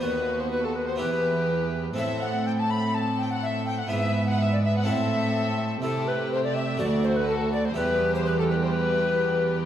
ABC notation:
X:1
M:4/4
L:1/16
Q:1/4=124
K:Ador
V:1 name="Recorder"
B3 c B A B c B6- B z | e2 f2 g a b2 a2 g f e2 g f | e3 f e d e f e6- e z | [K:Em] A2 B2 c d e2 d2 c B A2 d c |
B3 c B A B c B6- B z |]
V:2 name="Violin section"
B3 c B A B c B6- B z | e2 f2 g a b2 a2 g f e2 g f | e3 f e d e f e6- e z | [K:Em] A2 B2 c d e2 d2 c B A2 d c |
B3 c B A B c B6- B z |]
V:3 name="Violin section"
F8 G8 | A16 | B8 A8 | [K:Em] G8 F8 |
G16 |]
V:4 name="Harpsichord"
[^D,,B,F]8 [E,,B,EG]8 | [A,,CEA]16 | [^G,,B,EB]8 [A,,CEA]8 | [K:Em] [C,EA]8 [D,,FA]8 |
[E,,EG]16 |]
V:5 name="Viola section"
B,16 | C16 | B,8 C8 | [K:Em] A,16 |
G,16 |]
V:6 name="Cello section" clef=bass
^D,,8 E,,8 | A,,16 | ^G,,8 A,,8 | [K:Em] C,8 D,,8 |
E,,16 |]